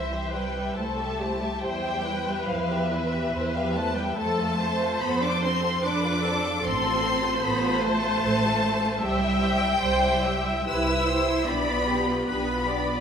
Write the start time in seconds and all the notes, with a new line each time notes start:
Already playing: C2 E3 E4 C5 E5
0.12 G4 E5
0.34 G3 E4 B4 C5 G5
0.55 G4 E5
0.76 C2 A3 E4 A4 C5 A5
0.97 G4 E5
1.19 E4 G4 C5
1.41 G4 E5
1.61 E2 G3 E4 C5 G5
1.85 G4 E5
2.06 E4 B4 C5
2.28 G4 E5
2.47 E2 F3 E4 C5 F5
2.70 G4 E5
2.90 E3 E4 C5 E5
3.12 G4 E5
3.32 E2 E4 C5
3.54 F3 G4 E5 F5
3.74 A3 E4 C5 A5
3.95 G3 G4 E5 G5
4.16 F2 A3 A4 C5 A5
4.40 F4 A4
4.59 A4 C5
4.81 F4 A4
5.01 F2 B3 A4 C5 B5
5.22 D4 F4 A4 D6
5.43 C4 A4 C5 C6
5.63 F4 A4
5.84 F2 D4 A4 B4 C5 D6
6.04 F4 A4
6.24 A4 C5
6.45 F4 A4
6.63 A1 C4 A4 C5 C6
6.84 F4 A4
7.02 A4 C5
7.21 F4 A4
7.41 A1 B3 A4 C5
7.45 B5
7.62 F4 A4
7.83 A3 A4 C5 A5
8.03 F4 A4
8.22 A1 A4 C5
8.44 F4 A4
8.63 A4 C5
8.84 F4 A4
9.00 C2 G3 G4 C5 E5 G5
9.21 E4 E5
9.40 G4 C5
9.60 E4 E5
9.79 C2 G4 C5
10.00 E4 E5
10.23 G4 C5 E5
10.46 E4 E5
10.66 C2 E4 G4 B4 C5 E6
10.86 E4 E5
11.08 G4 C5
11.27 E4 E5
11.47 B1 B3 D4 G4 D5 B5
11.67 F4 B4
11.87 D4 G4
12.07 F4 B4
12.27 B1 B3 D4 G4 B4 B5
12.47 F4 B4
12.66 D4 G4 D5
12.87 F4 B4